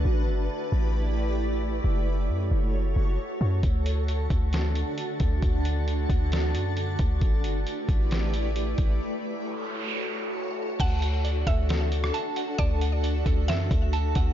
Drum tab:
CC |----------------|----------------|----------------|----------------|
HH |----------------|----------------|x-x-x-x-x-x-x-x-|x-x-x-x-x-x-x-x-|
SD |----------------|----------------|--------o-------|--------o-------|
BD |----------------|----------------|o-----o-------o-|o-----o-------o-|

CC |----------------|----------------|x---------------|----------------|
HH |x-x-x-x-x-x-x-x-|----------------|x-x-x-x-x-x-x-x-|x-x-x-x-x-x-x-x-|
SD |--------o-------|----------------|--------o--r----|--------o-------|
BD |o-----o-------o-|----------------|o-----o---------|o-----o---o---o-|